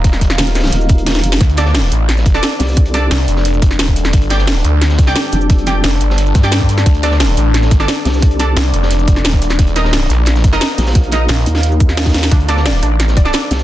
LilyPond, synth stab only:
\new Staff \with { instrumentName = "Synth stab" } { \time 4/4 \key d \phrygian \tempo 4 = 176 <ees' bes' ees''>8 r2. r8 | r8 <d' a' d''>16 r2 <d' a' d''>4~ <d' a' d''>16~ | <d' a' d''>8 <d' a' d''>16 r2. r16 | r8 <g' d'' g''>16 r2 <g' d'' g''>4~ <g' d'' g''>16~ |
<g' d'' g''>8 <g' d'' g''>16 r2 <g' d'' g''>16 r4 | r8 <d' a' d''>16 r2 <d' a' d''>4~ <d' a' d''>16~ | <d' a' d''>8 <d' a' d''>16 r2. r16 | r8 <ees' bes' ees''>16 r2 <ees' bes' ees''>4~ <ees' bes' ees''>16~ |
<ees' bes' ees''>8 <ees' bes' ees''>16 r2. r16 | r8 <d' a' d''>16 r2 <d' a' d''>4~ <d' a' d''>16 | }